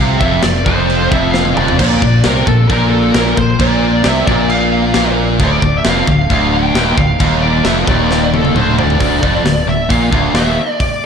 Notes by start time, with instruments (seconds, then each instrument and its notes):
Already playing: lead electric guitar F5
0.00 fingered electric bass C2, distorted electric guitar C3
0.18 fingered electric bass F1, distorted electric guitar F2, lead electric guitar E5, kick
0.43 fingered electric bass F1, distorted electric guitar F2, lead electric guitar D5, snare, china
0.65 fingered electric bass F1, distorted electric guitar F2, lead electric guitar C5, kick
0.90 china
1.10 fingered electric bass F1, distorted electric guitar F2, lead electric guitar E5, kick
1.31 lead electric guitar F5, snare
1.45 high tom
1.55 fingered electric bass F1, distorted electric guitar F2, lead electric guitar D5, mid tom
1.68 floor tom
1.78 fingered electric bass A#1, distorted electric guitar A#2, lead electric guitar D5, kick, china, crash
2.02 fingered electric bass A#1, distorted electric guitar A#2, kick
2.24 fingered electric bass C2, distorted electric guitar C3, lead electric guitar A#4, snare, china
2.47 fingered electric bass A#1, distorted electric guitar A#2, lead electric guitar A4, kick
2.68 fingered electric bass A#1, distorted electric guitar A#2, lead electric guitar A#4, kick, china
2.90 lead electric guitar A4
3.12 fingered electric bass A#1, distorted electric guitar A#2, lead electric guitar A#4, snare, china
3.37 fingered electric bass A#1, distorted electric guitar A#2, lead electric guitar C5, kick
3.59 fingered electric bass A#1, distorted electric guitar A#2, lead electric guitar D5, kick, china
4.04 fingered electric bass C2, distorted electric guitar C3, lead electric guitar E5, snare, china
4.27 fingered electric bass A#1, distorted electric guitar A#2, lead electric guitar D5, kick
4.50 lead electric guitar F5, china
4.94 fingered electric bass A#1, distorted electric guitar A#2, snare, china
5.39 fingered electric bass D1, distorted electric guitar D2, kick, china
5.44 lead electric guitar D5
5.62 fingered electric bass D1, distorted electric guitar D2, kick
5.78 lead electric guitar E5
5.85 fingered electric bass F1, distorted electric guitar F2, snare, china
5.89 lead electric guitar F5
6.07 fingered electric bass D1, distorted electric guitar D2, kick
6.30 fingered electric bass D1, distorted electric guitar D2, lead electric guitar F5, kick, china
6.54 lead electric guitar G5
6.74 fingered electric bass D#1, distorted electric guitar D#2, snare, china
6.97 fingered electric bass D1, distorted electric guitar D2, lead electric guitar F5, kick
7.20 fingered electric bass D#1, distorted electric guitar D#2, kick, china
7.42 lead electric guitar D5
7.65 fingered electric bass F1, distorted electric guitar F2, lead electric guitar E5, snare, china
7.87 fingered electric bass D#1, distorted electric guitar D#2, lead electric guitar D5, kick
8.11 snare
8.34 lead electric guitar A4, high tom
8.45 high tom
8.55 fingered electric bass D1, distorted electric guitar D2, lead electric guitar C5, mid tom
8.79 lead electric guitar D5, floor tom
8.90 floor tom
8.99 fingered electric bass D1, distorted electric guitar D2, kick, open hi-hat
9.22 fingered electric bass F1, distorted electric guitar F2, kick
9.44 fingered electric bass D1, distorted electric guitar D2, snare, open hi-hat
9.66 fingered electric bass D1, distorted electric guitar D2, lead electric guitar E5
9.89 fingered electric bass A#1, distorted electric guitar A#2, lead electric guitar F5, kick, open hi-hat
10.11 fingered electric bass D1, distorted electric guitar D2, kick
10.34 fingered electric bass D#1, distorted electric guitar D#2, lead electric guitar E5, snare, open hi-hat
10.80 lead electric guitar D5, kick, open hi-hat